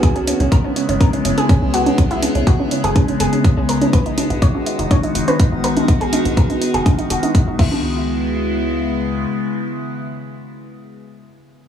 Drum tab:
CC |----------------|----------------|----------------|--------------x-|
HH |xxoxx-oxxxoxx-ox|xxoxx-oxxxoxx-ox|xxoxx-oxxxoxx-ox|xxoxxxoxxxoxx---|
CG |--o--o--o--o---o|--o--o--o--o---o|--o--o--o--o---o|--o--o--o--o---o|
BD |o---o---o---o---|o---o---o---o---|o---o---o---o---|o---o---o---o-o-|

CC |----------------|----------------|
HH |----------------|----------------|
CG |----------------|----------------|
BD |----------------|----------------|